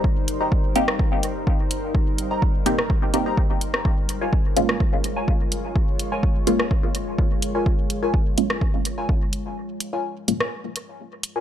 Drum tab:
HH |--x---x---x---x-|--x---x---x---x-|--x---x---x---x-|--x---x---x---x-|
SD |-------r--------|-------r-------r|-------r--------|-------r--------|
BD |o---o---o---o---|o---o---o---o---|o---o---o---o---|o---o---o---o---|

HH |--x---x---x---x-|--x---x---x---x-|
SD |-------r--------|-------r--------|
BD |o---o---o---o---|----------------|